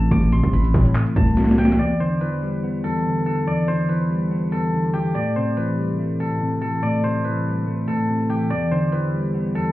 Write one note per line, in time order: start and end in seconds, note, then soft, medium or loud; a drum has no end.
0.00 0.10 A2 medium
0.00 0.31 C3 medium
0.00 0.52 E3 medium
0.00 0.32 A3 loud
0.00 1.16 A5 medium
0.00 0.21 B5 medium
0.11 0.42 A1 loud
0.11 1.15 A2 medium
0.11 1.33 D6 loud
0.11 kick loud
0.11 closed hi-hat medium
0.23 closed hi-hat medium
0.32 1.36 C3 medium
0.32 0.59 C6 loud
0.32 closed hi-hat medium
0.43 0.73 A1 loud
0.43 kick loud
0.43 closed hi-hat medium
0.53 1.57 E3 medium
0.53 1.88 B5 medium
0.53 closed hi-hat medium
0.64 closed hi-hat medium
0.74 0.94 A2 loud
0.74 0.95 G3 medium
0.74 kick loud
0.74 open hi-hat medium
0.85 closed hi-hat medium
0.95 1.79 A3 loud
0.95 clap loud
0.95 closed hi-hat medium
1.06 closed hi-hat medium
1.16 1.77 C2 loud
1.16 1.79 A2 medium
1.16 2.61 A5 medium
1.16 kick loud
1.16 closed hi-hat medium
1.27 closed hi-hat medium
1.37 1.79 C3 medium
1.37 snare medium
1.37 closed hi-hat medium
1.44 snare medium
1.48 snare medium
1.48 closed hi-hat medium
1.58 1.79 E3 medium
1.58 3.14 G5 medium
1.58 snare medium
1.58 closed hi-hat medium
1.65 snare loud
1.72 snare loud
1.79 2.83 E2 medium
1.79 3.47 D5 medium
2.00 3.04 D3 medium
2.00 2.27 C5 medium
2.21 3.25 E3 medium
2.21 3.74 B4 medium
2.42 3.47 G3 medium
2.63 3.68 B3 loud
2.84 3.46 E2 medium
2.84 3.26 A4 medium
3.05 3.67 D3 medium
3.26 3.88 E3 medium
3.26 4.52 A4 medium
3.47 4.51 E2 medium
3.47 5.14 D5 medium
3.68 4.72 D3 medium
3.68 3.95 C5 loud
3.89 4.93 E3 medium
3.89 5.42 B4 medium
4.10 5.15 G3 medium
4.31 5.15 B3 loud
4.52 5.14 E2 medium
4.52 6.20 A4 medium
4.73 5.15 D3 medium
4.93 5.15 E3 medium
4.93 7.29 G4 medium
5.15 6.18 A2 medium
5.15 6.82 D5 loud
5.36 6.40 C3 medium
5.36 5.63 C5 medium
5.57 6.61 E3 medium
5.57 7.10 B4 medium
5.78 5.98 G3 medium
5.99 7.04 A3 medium
6.20 6.81 A2 medium
6.20 6.61 A4 medium
6.41 7.02 C3 medium
6.61 7.23 E3 medium
6.61 7.87 A4 medium
6.83 7.86 A2 medium
6.83 8.50 D5 loud
7.04 8.07 C3 medium
7.04 7.31 C5 loud
7.25 8.28 E3 medium
7.25 8.77 B4 medium
7.45 7.66 G3 medium
7.67 8.51 A3 loud
7.87 8.50 A2 medium
7.87 9.55 A4 medium
8.08 8.50 C3 medium
8.30 8.50 E3 medium
8.30 9.72 G4 medium
8.50 9.54 E2 medium
8.50 9.72 D5 medium
8.71 9.72 D3 medium
8.71 8.98 C5 medium
8.92 9.72 E3 medium
8.92 9.72 B4 medium
9.13 9.72 G3 medium
9.34 9.72 B3 loud
9.55 9.72 E2 medium
9.55 9.72 A4 medium